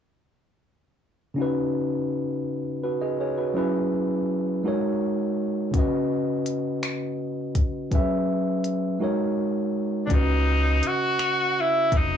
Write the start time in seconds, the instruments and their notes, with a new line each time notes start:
1.34 tine electric piano C#3 C#4 D#4
1.40 tine electric piano F#4 B4
2.83 tine electric piano F#4 B4
3.01 tine electric piano G#4 D#5
3.20 tine electric piano G#4 C#5
3.38 tine electric piano F#4 B4
3.54 tine electric piano F#3 C#4 E4 G#4
3.58 tine electric piano B4
4.64 tine electric piano G#3 D#4 F#4 A#4
4.68 tine electric piano C#5
5.71 tine electric piano C#3 C#4, kick, closed hi-hat
5.75 tine electric piano F#4 B4 D#5
6.46 closed hi-hat
6.83 finger snap, closed hi-hat
7.55 kick, closed hi-hat
7.91 tine electric piano F#3 C#4 G#4 B4 E5, kick, closed hi-hat
8.64 closed hi-hat
8.99 tine electric piano G#3 D#4 F#4 A#4
9.03 tine electric piano C#5
10.06 tine electric piano C#3 C#4, tenor saxophone D4, kick, closed hi-hat
10.11 fingered electric bass C#2, tenor saxophone D#4, tine electric piano F#4 B4
10.15 tine electric piano D#5
10.83 closed hi-hat
10.87 tenor saxophone F#4
11.19 finger snap, closed hi-hat
11.60 tenor saxophone E4
11.92 fingered electric bass F1, kick, closed hi-hat
11.97 tenor saxophone D#4